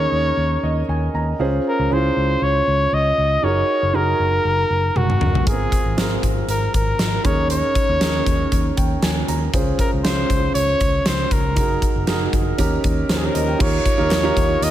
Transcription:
Already playing: C#4 D#4 G#4 A#4 C#5
0.12 D#2
0.37 D#2
0.63 D#2 D#5
0.89 D#2 G#5
1.14 D#2 A#5
1.39 C#2 C#4 F4 G#4 C5
1.69 A#4
1.79 C#2
1.90 C#2 C#4 E4 G#4 C5
1.97 F4
2.16 C#2
2.42 C#2 C#5
2.67 C#2
2.92 C#2 D#5
3.18 C#2
3.42 F#1 D#4 F#4 G#4 A#4 C#5
3.83 F#1
3.93 F#1 D#4 F#4 G#4 A#4
4.20 F#1
4.45 F#1
4.70 F#1
4.95 F#1 F#4, high tom
5.10 mid tom
5.21 F#1, mid tom
5.35 floor tom
5.46 G#1 B3 F4 G#4 A#4, kick, closed hi-hat
5.52 C4
5.72 kick, closed hi-hat
5.86 G#1
5.96 G#1 C4 F4 G#4 A#4, snare, closed hi-hat
6.23 G#1, kick, closed hi-hat
6.48 G#1 A#4, closed hi-hat
6.74 G#1 A#4, kick, closed hi-hat
6.99 G#1, snare, closed hi-hat
7.24 D#2 C#4 D#4 G#4 A#4 C#5, kick, closed hi-hat
7.50 C#5, closed hi-hat
7.75 kick, closed hi-hat
7.89 D#2
8.00 D#2 C#4 D#4 G#4 A#4, snare, closed hi-hat
8.26 D#2, kick, closed hi-hat
8.52 D#2, kick, closed hi-hat
8.77 D#2 G5, kick, closed hi-hat
9.02 D#2 G#5, snare, closed hi-hat
9.28 D#2 A#5, closed hi-hat
9.53 C#2 C#4 F4 G#4 C5, kick, closed hi-hat
9.79 A#4, kick, closed hi-hat
9.93 C#2
10.04 C#2 C#4 F4 G#4 C5, snare, closed hi-hat
10.30 C#2, kick, closed hi-hat
10.55 C#2 C#5, closed hi-hat
10.81 C#2, kick, closed hi-hat
11.05 C#2 C5, snare, closed hi-hat
11.31 C#2 A#4, kick, closed hi-hat
11.56 F#1 D#4 F#4 G#4 A#4, kick, closed hi-hat
11.82 kick, closed hi-hat
11.96 F#1
12.07 F#1 D#4 F#4 G#4 A#4, snare, closed hi-hat
12.33 F#1, kick, closed hi-hat
12.58 D#2 C#4 D#4 G4 A#4, kick, closed hi-hat
12.84 D#2, kick, closed hi-hat
13.09 D#2 G4 A#4 C5, snare, closed hi-hat
13.17 G#4
13.23 G4 A#4 C#5
13.34 D#2 A#4 D#5, closed hi-hat
13.48 C#5 G5
13.58 D#2 D#4 F4 G4 A#4 C#5, kick, crash
13.86 kick, closed hi-hat
13.98 D#2 D#4 F4 G4 A#4
14.11 D#2, snare, clap, closed hi-hat
14.23 D#4 F4 G4 A#4
14.37 D#2, kick, closed hi-hat
14.62 D#2 D#5, closed hi-hat

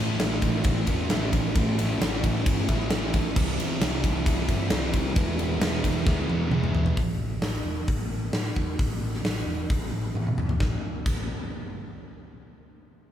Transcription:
Already playing: A2 E3 C#4 E4
0.00 A3
0.19 A1 A2 E3 A3 C#4 E4, snare, ride
0.41 A1 A3 C#4 E4, kick, snare, ride
0.64 A1, kick, ride
0.87 E2 A3 C#4 E4, kick, ride
1.09 A1 E3 A3 C#4 E4, snare, ride
1.33 A1, kick, ride
1.55 A1 A2 E3 A3 C#4 E4, kick, ride
1.77 A3 C#4 E4, ride
1.99 A1 A2 E3 A3 C#4 E4, snare, ride
2.23 A1 A3 C#4 E4, kick, ride
2.46 G2, kick, ride
2.68 A1 A3 C#4 E4, kick, ride
2.90 A1 E3 A3 C#4 E4, snare, ride
3.14 kick, ride
3.35 C2 C3 E3 G3 C4 E4, kick, crash
3.58 C3 G3 C4 E4, ride
3.81 C2 C3 E3 G3 C4 E4, snare, ride
4.04 C2 G3 C4 E4, kick, ride
4.26 C2, kick, ride
4.48 G2 G3 C4 E4, kick, ride
4.69 C2 E3 G3 C4 E4, snare, ride
4.94 C2, kick, ride
5.14 E1 E3 G#3 B3 E4, kick, ride
5.36 G#3 B3 E4, ride
5.59 E1 E3 G#3 B3 E4, snare, ride
5.83 E1 G#3 B3 E4, kick, snare, ride
6.06 D2, kick, snare
6.28 E1 G#3 B3 E4, high tom
6.50 E1 E3 G#3 B3 E4, mid tom
6.64 mid tom
6.75 floor tom
6.86 floor tom
6.97 A1, kick, open hi-hat
7.19 A1
7.42 A1, snare, open hi-hat
7.64 E1
7.88 A1, kick, open hi-hat
8.10 A1
8.32 A2, snare, open hi-hat
8.45 snare
8.56 E2, kick
8.79 A1, kick, open hi-hat
9.01 A1
9.14 snare
9.23 A1, snare, open hi-hat
9.46 E1
9.70 A1, kick, open hi-hat
9.93 A1
10.15 A2, high tom
10.27 mid tom
10.38 E2, mid tom
10.49 floor tom
10.60 A1, kick, snare
11.06 A1, kick, crash

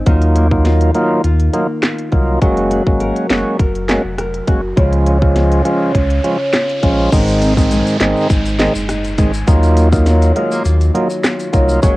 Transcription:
Already playing: C4 D#4
0.06 D#2 D#3 F#3 A#3 D#4 F4, kick, closed hi-hat
0.22 closed hi-hat
0.36 A#3, closed hi-hat
0.51 F#3 A#3 D#4 F4, kick
0.65 F4, snare, closed hi-hat
0.81 closed hi-hat
0.95 F#3 A#3 D#4 F4, closed hi-hat
1.24 D#2 F4, closed hi-hat
1.40 closed hi-hat
1.53 F#3 A#3 D#4 F4, closed hi-hat
1.83 F4, cross-stick, snare, clap, closed hi-hat
1.99 closed hi-hat
2.12 C2 F#3 A#3 D#4 F4, kick, closed hi-hat
2.41 F#1 F#3 G#3 A#3 C#4 F#4, kick, closed hi-hat, riser
2.57 closed hi-hat
2.71 F#4, closed hi-hat
2.87 G#1 G#3 A#3 C#4 F#4, kick
3.00 A#4, closed hi-hat
3.16 closed hi-hat
3.30 F#1 G#3 A#3 C#4 F#4, snare, clap, closed hi-hat
3.59 F#1 A#4, kick, closed hi-hat
3.75 closed hi-hat
3.88 G#3 A#3 C#4 F#4, snare, clap, closed hi-hat
4.04 F1
4.18 A#4, cross-stick, closed hi-hat
4.34 closed hi-hat
4.47 F#1 G#3 A#3 C#4 F#4, kick, closed hi-hat
4.76 C#2 C#3 F3 G#3 C#4 F4, kick, closed hi-hat
4.93 closed hi-hat
5.06 C#4, closed hi-hat
5.22 F3 G#3 C#4 F4, kick
5.36 F4, snare, closed hi-hat
5.52 closed hi-hat
5.65 F3 G#3 C#4 F4, closed hi-hat
5.95 C#2 F4, kick, closed hi-hat
6.10 closed hi-hat
6.24 F3 G#3 C#4 F4, closed hi-hat
6.53 F4, cross-stick, snare, clap, closed hi-hat
6.69 closed hi-hat
6.82 A#1 F3 G#3 C#4 F4, kick, closed hi-hat
7.12 G#1 G#2 D#3 G#3 C4 D#4, kick, closed hi-hat, crash, downlifter, shaker
7.28 closed hi-hat, shaker
7.42 C4, closed hi-hat, shaker
7.57 A#1 D#3 G#3 C4 D#4, kick, shaker
7.71 G#3, closed hi-hat, shaker
7.87 closed hi-hat, shaker
8.00 G#1 D#3 G#3 C4 D#4, snare, clap, closed hi-hat
8.16 shaker
8.30 G#1 D#4, kick, closed hi-hat, shaker
8.45 closed hi-hat, shaker
8.59 D#3 G#3 C4 D#4, snare, clap, closed hi-hat
8.75 F#1, shaker
8.89 D#4, cross-stick, closed hi-hat, shaker
9.04 closed hi-hat, shaker
9.18 G#1 D#3 G#3 C4 D#4, kick, closed hi-hat, shaker
9.34 shaker
9.47 D#2 D#3 F#3 A#3 D#4 F4, kick, closed hi-hat, shaker
9.63 closed hi-hat, shaker
9.77 A#3, closed hi-hat, shaker
9.92 F#3 A#3 D#4 F4, kick, shaker
10.06 F#3, snare, closed hi-hat, shaker
10.22 closed hi-hat, shaker
10.36 F#3 G#3 A#3 D#4 F4, closed hi-hat
10.52 A#3, shaker
10.65 D#2 F4, closed hi-hat, shaker
10.81 closed hi-hat, shaker
10.94 F#3 A#3 D#4 F4, closed hi-hat
11.10 shaker
11.24 F4, cross-stick, snare, clap, closed hi-hat, shaker
11.39 closed hi-hat, shaker
11.53 C2 F#3 A#3 D#4 F4, kick, closed hi-hat, shaker
11.69 shaker
11.82 F#1 F#3 G#3 A#3 C#4 F#4, kick, closed hi-hat, shaker

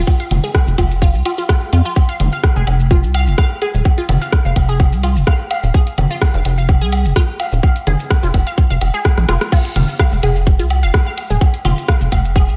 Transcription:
0.07 kick, low woodblock
0.20 F5, closed hi-hat, shaker
0.31 F1, closed hi-hat, low conga, low woodblock
0.44 G#4, shaker
0.55 kick, cross-stick, low woodblock
0.67 F1, shaker
0.78 F1 F4, kick, closed hi-hat, low woodblock
0.91 shaker
1.02 F4, kick, low woodblock
1.14 C2, shaker
1.25 F4, closed hi-hat, low woodblock
1.38 F4, shaker
1.49 F4, kick, cross-stick, low woodblock
1.73 F2 F4, closed hi-hat, low woodblock
1.85 F4, shaker
1.96 kick, low woodblock
2.09 F5, closed hi-hat, shaker
2.20 F1, closed hi-hat, low conga, low woodblock
2.33 F5, shaker
2.44 kick, cross-stick, low woodblock
2.56 F1 G#4, shaker
2.67 F1, closed hi-hat, low woodblock
2.80 shaker
2.91 F4, kick, low woodblock
3.03 C2, shaker
3.14 F5, closed hi-hat, low woodblock
3.27 F1, shaker
3.38 F5, kick, cross-stick, low woodblock
3.62 G#4, closed hi-hat, low woodblock
3.74 D#1, shaker
3.85 kick, low woodblock
3.98 F4, closed hi-hat, shaker
4.09 F1, closed hi-hat, low conga, low woodblock
4.22 F5, shaker
4.33 kick, cross-stick, low woodblock
4.45 F1 F5, shaker
4.56 F1, kick, closed hi-hat, low woodblock
4.69 G#4, shaker
4.80 kick, low woodblock
4.92 C2, shaker
5.03 F4, closed hi-hat, low woodblock
5.16 F1, shaker
5.27 F5, kick, cross-stick, low woodblock
5.51 F5, closed hi-hat, low woodblock
5.63 D#1, shaker
5.74 G#4, kick, low woodblock
5.87 closed hi-hat, shaker
5.98 F1, closed hi-hat, low conga, low woodblock
6.11 F4, shaker
6.22 kick, cross-stick, low woodblock
6.34 F1 F5, shaker
6.45 F1, closed hi-hat, low woodblock
6.58 F5, shaker
6.69 kick, low woodblock
6.81 C2 G#4, shaker
6.92 closed hi-hat, low woodblock
7.05 F1, shaker
7.16 F4, kick, cross-stick, low woodblock
7.40 F5, closed hi-hat, low woodblock
7.52 D#1, shaker
7.63 F5, kick, low woodblock
7.76 closed hi-hat, shaker
7.87 F1 G#4, closed hi-hat, low conga, low woodblock
8.00 shaker
8.11 kick, cross-stick, low woodblock
8.23 F1 F4, shaker
8.34 F1, kick, closed hi-hat, low woodblock
8.47 F5, closed hi-hat, shaker
8.58 kick, low woodblock
8.70 F1 F5, shaker
8.81 F1, closed hi-hat, low woodblock
8.94 G#4, shaker
9.05 kick, cross-stick, low woodblock
9.18 A#1, cross-stick, shaker
9.29 F1 F4, cross-stick, closed hi-hat, low woodblock
9.41 cross-stick, shaker
9.52 F4, kick, crash, low woodblock
9.65 closed hi-hat, shaker
9.76 F1 F5, closed hi-hat, low conga, low woodblock
9.89 shaker
9.99 F5, kick, cross-stick, low woodblock
10.12 F1, shaker
10.23 F1 G#4, closed hi-hat, low woodblock
10.36 shaker
10.47 kick, low woodblock
10.59 C2 F4, shaker
10.70 closed hi-hat, low woodblock
10.83 F1 F5, shaker
10.94 kick, cross-stick, low woodblock
11.07 F5
11.18 closed hi-hat, low woodblock
11.30 D#1 G#4, shaker
11.41 kick, low woodblock
11.54 closed hi-hat, shaker
11.65 F1 F4, closed hi-hat, low conga, low woodblock
11.77 shaker
11.88 F5, kick, cross-stick, low woodblock
12.01 F1, shaker
12.12 F1 F5, kick, closed hi-hat, low woodblock
12.25 shaker
12.36 G#4, kick, low woodblock
12.48 C2, shaker

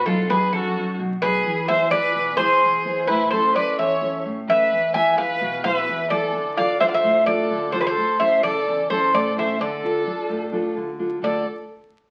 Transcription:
Already playing: B2
0.06 F#3 B3 D#4 F4 A4
0.29 F#3 B3 D#4 G#4 B4
0.53 F#2 F#4 A4
0.76 F#3 B3 D#4
0.99 B2
1.22 F#3 B3 D#4 G#4 B4
1.46 E3
1.68 B3 E4 G#4 C5 E5
1.91 B3 E4 G#4 B4 D5
2.15 B2
2.37 B2 E4 G#4 C5
2.62 E3
2.85 B3 E4 G#4
3.07 A2 E4 B4
3.31 C#4 E4 A4 C5
3.54 C#4 E4 A4 B4 D5
3.79 E2 C#5 E5
4.01 C#4 E4 A4
4.26 A2
4.48 C#4 E4 A4 B4 E5
4.71 E2
4.94 B3 E4 G#4 E5 G#5
5.18 E3 B3 G#4 B4 F5
5.41 B2
5.64 B3 E4 G#4 B4 E5
5.89 E2
6.10 B3 E4 G#4 A4 D5
6.34 D3
6.56 D4 F4 A4 D5 F5
6.80 D4 F4 A4 C5 E5
6.88 D5 F5
6.94 C5 E5
7.03 A2
7.26 D4 F4 A4 D5
7.51 D3
7.72 D4 F4 A4 C5
7.81 G#4 B4
7.87 A4 C5
7.98 A2
8.20 C#4 E4 A4 C5 E5
8.43 C#3 E4 A4 D5
8.68 E2
8.90 C#4 E4 A4 C5
9.13 A2 A4 D5
9.37 C#4 E4 A4 C5 E5
9.60 D3 A4 D5
9.83 D4 F4 A4
10.06 D4 F4 A4
10.29 A2
10.52 D4 F4 A4
10.76 D3
10.99 D4 F4 A4
11.22 D3 A3 D4 F4 A4 D5

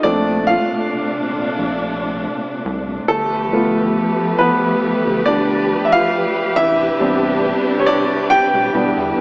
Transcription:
Already playing: A3
0.03 A#1 A#2 C3 A3 C4 D4 D5
0.47 F4 F5
1.35 A#1
1.58 A#1
2.65 C2
3.08 G1 F3 A3 G4 A4 B4
3.53 A3 B3 F4
4.39 B3 B4
4.83 G1
5.06 G1
5.26 D4 D5
5.85 E5
5.92 F4 F5
6.56 A1 C3 D4 E4 E5
7.00 A1 G3 B3 C4 D4
7.79 C#5
7.86 D4 D5
8.30 E1 G4 G5
8.54 E1
8.74 E1 D3 G3 B3 D4 E4
8.97 E2
9.17 B1

